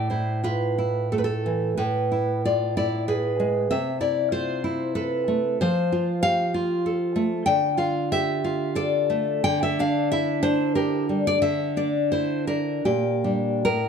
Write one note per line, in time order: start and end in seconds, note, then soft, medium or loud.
0.00 1.72 A2 medium
0.10 0.77 E4 medium
0.10 0.43 C5 medium
0.43 1.44 F4 medium
0.43 1.08 B4 medium
0.78 1.76 E4 medium
1.12 1.77 A3 medium
1.12 1.18 A4 medium
1.18 1.24 B4 medium
1.24 1.75 A4 medium
1.46 1.77 E3 medium
1.77 3.66 A2 medium
1.77 2.41 B4 medium
2.12 2.75 E4 medium
2.45 3.40 F4 medium
2.45 2.76 D5 loud
2.77 3.70 E4 medium
2.77 3.07 D5 loud
3.08 3.70 G#4 medium
3.08 3.67 B4 medium
3.40 3.70 G#3 medium
3.71 5.56 C3 medium
3.71 4.00 E5 loud
4.01 4.63 E4 medium
4.01 4.31 D5 medium
4.32 5.27 F4 medium
4.32 4.93 C5 loud
4.64 5.59 E4 medium
4.95 5.59 A4 medium
4.95 5.56 B4 loud
5.28 5.59 A3 medium
5.61 7.45 F3 medium
5.61 6.20 C5 loud
5.92 6.53 F4 medium
6.23 7.17 G4 medium
6.23 6.53 F5 loud
6.54 7.49 F4 medium
6.86 7.49 A4 medium
7.16 7.48 A3 medium
7.46 9.40 D3 medium
7.46 7.78 G5 loud
7.77 8.43 F4 medium
7.77 8.10 F5 medium
8.12 9.10 G4 medium
8.12 8.74 E5 loud
8.44 9.44 F4 medium
8.75 9.44 A4 medium
8.75 9.41 D5 loud
9.10 9.44 A3 medium
9.44 11.39 D3 loud
9.44 9.61 G5 loud
9.63 9.79 E5 loud
9.79 10.41 D4 medium
9.79 10.11 F5 loud
10.12 11.10 E4 medium
10.12 10.42 E5 loud
10.43 11.43 D4 medium
10.43 10.74 C5 loud
10.75 11.09 G4 medium
10.75 11.24 A#4 loud
11.09 11.43 G3 medium
11.27 11.41 D5 loud
11.42 12.80 D3 medium
11.42 11.75 E5 loud
11.77 12.47 D4 medium
11.77 12.10 D5 medium
12.12 12.85 E4 medium
12.12 12.46 C5 loud
12.47 12.85 D4 medium
12.47 12.83 A#4 loud
12.85 13.64 A#2 medium
12.85 13.63 G4 medium
13.24 13.62 G3 medium
13.24 13.62 D4 medium
13.65 13.89 A2 medium
13.65 13.89 A#4 loud